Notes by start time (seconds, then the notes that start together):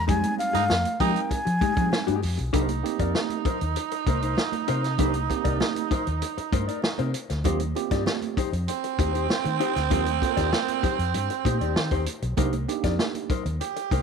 0.07 F2 G3 G#3 C4 D#4 G4 G#5, kick, closed hi-hat, muted conga, low conga
0.23 muted clean electric guitar stroke, closed hi-hat, high conga
0.38 F5, muted clean electric guitar stroke, closed hi-hat, muted conga
0.53 G2 G#3 D#4 G#4, snare, closed hi-hat
0.69 F2, muted clean electric guitar stroke, snare, muted conga, high conga
0.85 closed hi-hat, high conga
1.00 F3 G#3 C4 D#4 G4 A#4 G5, kick, closed hi-hat, muted conga, low conga
1.14 muted clean electric guitar stroke, closed hi-hat
1.30 G#5, muted clean electric guitar stroke, kick, closed hi-hat
1.45 F3, muted clean electric guitar stroke, closed hi-hat
1.61 G#3 D#4 G4, kick, closed hi-hat, muted conga, high conga
1.76 F3 G3 G#3 C4 D#4 G#4, kick, closed hi-hat
1.91 muted clean electric guitar stroke, snare, muted conga
2.07 G2 G#3 D#4 G4, closed hi-hat, high conga
2.22 F2, muted clean electric guitar stroke, open hi-hat, muted conga
2.38 B1, muted clean electric guitar stroke, closed hi-hat
2.53 C2 A#3 D4 D#4 G4 A#4 C5, kick, closed hi-hat, low conga
2.69 muted clean electric guitar stroke, closed hi-hat, high conga
2.83 A#3 C4 D#4 G4, muted clean electric guitar stroke, closed hi-hat
2.99 F2 D#4 A#4 D5, kick, closed hi-hat
3.15 muted clean electric guitar stroke, snare, muted conga, high conga
3.30 closed hi-hat, high conga
3.45 D#4 A#4 C5, muted fingered electric bass stroke, kick, closed hi-hat, low conga
3.61 D#2, muted clean electric guitar stroke, closed hi-hat
3.76 muted clean electric guitar stroke, closed hi-hat
3.91 muted clean electric guitar stroke, closed hi-hat
4.07 C2 D#4 A#4 C5, kick, closed hi-hat, muted conga, high conga
4.22 D#4 A#4 C5, closed hi-hat
4.37 muted clean electric guitar stroke, snare, muted conga
4.52 muted clean electric guitar stroke, closed hi-hat, high conga
4.68 C3 D#4 A#4 C5, closed hi-hat
4.84 muted clean electric guitar stroke, snare, closed hi-hat
4.98 C2 A#3 D4 D#4 G4 A#4 C5, kick, closed hi-hat, low conga
5.14 muted clean electric guitar stroke, closed hi-hat, high conga
5.30 A#3 C4 D#4 G4, muted clean electric guitar stroke, kick, closed hi-hat
5.44 C2 D#4 A#4 D5, kick, closed hi-hat
5.60 snare, high conga
5.75 closed hi-hat, high conga
5.91 D#4 A#4 C5, muted fingered electric bass stroke, kick, closed hi-hat, muted conga, low conga
6.07 D#2, muted clean electric guitar stroke, closed hi-hat
6.22 muted clean electric guitar stroke, closed hi-hat, muted conga
6.38 muted fingered electric bass stroke, muted clean electric guitar stroke, closed hi-hat
6.52 G2 D#4 A#4 C5, kick, closed hi-hat, muted conga, high conga
6.68 D#4 A#4 D5, closed hi-hat
6.82 snare, muted conga
6.98 C3 D#4 A#4 C5, closed hi-hat, high conga
7.14 muted clean electric guitar stroke, closed hi-hat, muted conga
7.30 D2, muted clean electric guitar stroke, snare, closed hi-hat
7.44 D#2 A#3 C4 D#4 F4 G4 C5, kick, closed hi-hat, muted conga, low conga
7.60 muted clean electric guitar stroke, closed hi-hat, high conga
7.75 A#3 C4 F4 G4, muted clean electric guitar stroke, closed hi-hat, muted conga
7.91 G2 D#4 G4 D5, kick, snare, closed hi-hat
8.06 snare, muted conga, high conga
8.22 closed hi-hat, high conga
8.37 D#4 G4 C5, muted fingered electric bass stroke, kick, closed hi-hat, muted conga, low conga
8.53 F2, muted clean electric guitar stroke, closed hi-hat
8.68 C4, muted clean electric guitar stroke, closed hi-hat, muted conga
8.84 muted clean electric guitar stroke, closed hi-hat
8.99 D#2 D#4 G4 C5, kick, closed hi-hat, muted conga, high conga
9.14 D#4 G4 C5, closed hi-hat
9.29 muted clean electric guitar stroke, snare, muted conga
9.44 D#3, muted clean electric guitar stroke, closed hi-hat, high conga
9.60 D#4 G4 C5, closed hi-hat, muted conga
9.76 D2, muted clean electric guitar stroke, snare, closed hi-hat
9.90 D#2 A#3 C4 D#4 F4 G4 A#4 C5, kick, closed hi-hat, low conga
10.06 muted clean electric guitar stroke, closed hi-hat, high conga
10.22 A#3 C4 F4 A4, muted clean electric guitar stroke, kick, closed hi-hat
10.29 A#4
10.37 D#2 D#4 G4 D5, kick, snare, closed hi-hat
10.53 snare, muted conga, high conga
10.68 closed hi-hat, high conga
10.83 D#4 G4 C5, muted fingered electric bass stroke, kick, closed hi-hat, muted conga, low conga
10.99 F2, muted clean electric guitar stroke, closed hi-hat
11.14 G2, muted clean electric guitar stroke, closed hi-hat
11.30 muted clean electric guitar stroke, closed hi-hat
11.45 A#2 D#4 G4 C5, kick, closed hi-hat, muted conga, high conga
11.61 D#2 D#4 G4 D5, closed hi-hat
11.76 D#3, snare
11.91 D#2 D#4 G4 C5, kick, closed hi-hat, high conga
12.06 muted clean electric guitar stroke, closed hi-hat, muted conga
12.22 B1, muted clean electric guitar stroke, closed hi-hat
12.37 C2 A#3 D4 D#4 G4 A#4 C5, kick, closed hi-hat, muted conga, low conga
12.53 muted clean electric guitar stroke, closed hi-hat, high conga
12.68 A#3 D4 D#4 G4, muted clean electric guitar stroke, closed hi-hat, muted conga
12.84 F2 D#4 A#4 D5, kick, snare, closed hi-hat
12.99 muted clean electric guitar stroke, snare, high conga
13.15 closed hi-hat, high conga
13.30 D#4 A#4 C5, muted fingered electric bass stroke, kick, closed hi-hat, muted conga, low conga
13.46 D#2, muted clean electric guitar stroke, closed hi-hat
13.61 G4, muted clean electric guitar stroke, closed hi-hat, muted conga
13.76 muted clean electric guitar stroke, closed hi-hat
13.91 C2 D#4 A#4 C5, kick, closed hi-hat, high conga